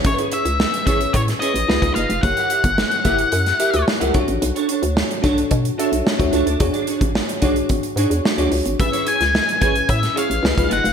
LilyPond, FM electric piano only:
\new Staff \with { instrumentName = "FM electric piano" } { \time 4/4 \key b \dorian \tempo 4 = 110 << { cis''16 r2. r8. | r1 | r1 | r1 |
r1 | } \\ { <cis' e' gis' a' b'>4 r8 <cis' e' gis' cis''>8. r16 <cis' e' gis' b'>8 <dis' eis' gis' b'>16 <dis' eis' gis' b'>8 r16 | <e' g' ais' cis''>4 r8 <e' g' ais' e''>8. r16 <e' g' ais' e''>8 r16 <e' g' ais' e''>16 <cis' d' fis' a' cis''>8~ | <cis' d' fis' a' cis''>4 r8 <d' fis' a' cis''>8. r16 <d' fis' a' e''>8 r16 <d' fis' a' cis''>8 r16 | <d' fis' gis' cis''>4 r8 <d' fis' gis' cis''>8. r16 <d' fis' gis' cis''>8 r16 <d' fis' gis' cis''>8 r16 |
<cis' e' gis' b'>4 r8 <cis' e' gis' b'>8. r16 <cis' e' gis' cis''>8 <dis' eis' gis' b'>16 <dis' eis' gis' b'>8 r16 | } >> }